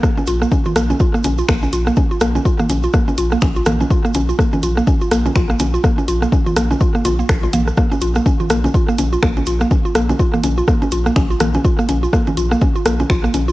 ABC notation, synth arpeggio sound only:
X:1
M:4/4
L:1/16
Q:"Swing 16ths" 1/4=124
K:Bbm
V:1 name="Synth arpeggio sound"
B, D F B, D F B, D F B, D F B, D F B, | D F B, D F B, D F B, D F B, D F B, D | F B, D F B, D F B, D F B, D F B, D F | B, D F B, D F B, D F B, F B, z F B, z |
B, D F B, D F B, D F B, D F B, D F B, | D F B, D F B, D F B, D F B, D F B, D | F B, D F B, D F B, D F B, D F B, D F |]